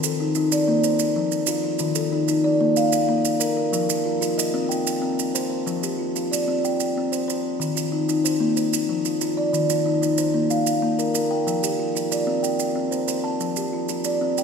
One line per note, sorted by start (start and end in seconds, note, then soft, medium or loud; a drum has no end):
0.00 0.19 D#3 medium
0.00 0.52 A4 medium
0.00 maracas medium
0.20 0.35 D#4 medium
0.35 0.68 D#4 medium
0.35 maracas medium
0.52 1.00 D5 medium
0.52 maracas medium
0.68 0.84 A#3 medium
0.84 1.32 C5 medium
0.84 maracas medium
0.99 maracas medium
1.16 1.48 F3 medium
1.32 maracas medium
1.47 1.63 F4 medium
1.47 maracas medium
1.64 1.96 F4 medium
1.79 2.12 D#3 medium
1.79 maracas medium
1.95 2.44 A4 medium
1.95 maracas medium
2.12 2.27 D#4 medium
2.28 2.60 D#4 medium
2.28 maracas medium
2.44 2.93 D5 medium
2.61 2.77 A#3 medium
2.76 3.25 F5 medium
2.76 maracas medium
2.92 maracas medium
3.09 3.41 A#3 medium
3.25 maracas medium
3.40 3.56 A#4 medium
3.40 maracas medium
3.57 3.88 A#4 medium
3.73 4.05 F3 medium
3.73 maracas medium
3.89 4.38 A#4 medium
3.89 maracas medium
4.06 4.20 F4 medium
4.21 4.54 F4 medium
4.21 maracas medium
4.38 4.86 D#5 medium
4.38 maracas medium
4.54 4.70 C4 medium
4.69 5.18 G5 medium
4.69 maracas medium
4.87 maracas medium
5.02 5.34 C4 medium
5.19 maracas medium
5.35 5.48 C5 medium
5.35 maracas medium
5.50 5.82 C5 medium
5.67 5.99 F3 medium
5.67 maracas medium
5.83 6.31 G4 medium
5.83 maracas medium
5.99 6.14 F4 medium
6.16 6.48 F4 medium
6.16 maracas medium
6.31 6.80 D5 medium
6.31 maracas medium
6.48 6.64 C4 medium
6.65 7.13 G5 medium
6.65 maracas medium
6.80 maracas medium
6.97 7.29 C4 medium
7.12 7.27 C5 medium
7.12 maracas medium
7.28 7.60 C5 medium
7.28 maracas medium
7.60 7.92 D#3 medium
7.60 maracas soft
7.76 8.24 F4 medium
7.76 maracas medium
7.92 8.07 D#4 medium
8.09 8.41 D#4 medium
8.09 maracas medium
8.24 8.55 C5 medium
8.24 maracas medium
8.40 8.57 A#3 medium
8.57 9.05 C5 medium
8.57 maracas medium
8.73 maracas medium
8.89 9.22 F3 medium
9.05 9.20 F4 medium
9.05 maracas medium
9.21 9.54 F4 medium
9.21 maracas medium
9.37 9.70 D5 medium
9.53 9.86 D#3 medium
9.53 maracas medium
9.70 10.18 F4 medium
9.70 maracas medium
9.86 10.01 D#4 medium
10.02 10.34 D#4 medium
10.02 maracas medium
10.18 10.67 C5 medium
10.18 maracas medium
10.34 10.50 A#3 medium
10.50 10.99 F5 medium
10.50 maracas medium
10.67 maracas medium
10.82 11.15 A#3 medium
10.99 11.13 A#4 medium
10.99 maracas medium
11.14 11.47 A#4 medium
11.14 maracas medium
11.31 11.63 G5 medium
11.47 11.79 F3 medium
11.47 maracas medium
11.63 12.12 G4 medium
11.63 maracas medium
11.79 11.94 F4 medium
11.95 12.28 F4 medium
11.95 maracas medium
12.11 12.60 D5 medium
12.11 maracas medium
12.27 12.43 C4 medium
12.43 12.92 G5 medium
12.43 maracas medium
12.59 maracas medium
12.75 13.08 C4 medium
12.91 13.07 C5 medium
12.91 maracas medium
13.08 13.40 C5 medium
13.08 maracas medium
13.24 13.56 A5 medium
13.40 13.73 F3 medium
13.40 maracas soft
13.56 14.05 G4 medium
13.56 maracas medium
13.73 13.88 F4 medium
13.89 14.21 F4 medium
13.89 maracas medium
14.04 14.44 D5 medium
14.04 maracas medium
14.21 14.37 C4 medium
14.38 14.44 G5 medium
14.38 maracas medium